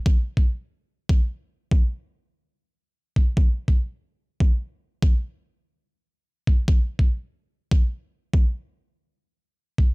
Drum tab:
BD |o--o------o-----|o-------------o-|o--o------o-----|o-------------o-|

BD |o--o------o-----|o-------------o-|